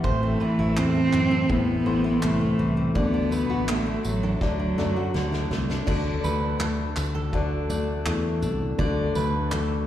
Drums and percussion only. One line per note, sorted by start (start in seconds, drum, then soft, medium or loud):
0.04 kick loud
0.77 clap medium
1.13 clap medium
1.50 kick loud
2.23 clap loud
2.95 kick loud
3.32 tambourine medium
3.68 clap loud
4.04 tambourine medium
4.41 kick loud
4.41 snare medium
4.78 snare medium
5.15 snare medium
5.33 snare medium
5.52 snare medium
5.70 snare medium
5.88 kick loud
5.88 crash medium
6.24 tambourine medium
6.60 clap loud
6.96 clap medium
6.96 tambourine medium
7.33 kick medium
7.70 tambourine medium
8.06 clap loud
8.43 tambourine medium
8.79 kick loud
9.15 tambourine medium
9.52 clap loud